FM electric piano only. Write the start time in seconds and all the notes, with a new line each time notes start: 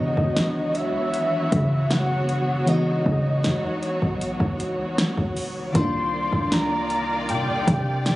Already playing: D#3 E3 G#3 B3 D4 F#4
2.65 E3 G#3 B3 D#4
2.70 F#4
5.73 D#3 G3 A#3 D4
5.78 F4